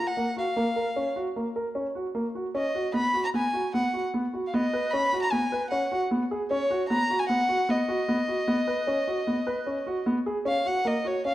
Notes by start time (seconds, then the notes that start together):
0.07 F#5
0.17 A#3
0.37 F#4 F5
0.57 A#3
0.76 A#4
0.96 C#4
1.16 F#4
1.36 A#3
1.56 A#4
1.75 C#4
1.95 F#4
2.15 A#3
2.35 F#4
2.55 C#4 D#5
2.75 F#4
2.94 B3 B5
3.14 F#4
3.25 A#5
3.34 B3 G#5
3.54 F#4
3.74 B3 F#5
3.94 F#4
4.14 B3
4.33 F#4
4.47 F5
4.54 B3 D#5
4.73 B4
4.91 C#4 B5
5.13 F#4
5.22 A#5
5.31 B3 G#5
5.52 B4
5.70 C#4 F#5
5.92 F#4
6.11 B3
6.31 G#4
6.51 C#4 C#5
6.71 F#4
6.89 B3 A#5
7.10 F#4
7.19 G#5
7.29 B3 F#5
7.49 F#4
7.69 B3 D#5
7.88 F#4
8.08 B3
8.28 F#4
8.48 B3
8.67 B4
8.87 C#4
9.08 F#4
9.27 B3
9.47 B4
9.67 C#4
9.87 F#4
10.06 B3
10.26 G#4
10.45 C#4 F5
10.65 F#4 F#5
10.85 A#3 D#5
11.05 F#4 C#5
11.25 C#4 F5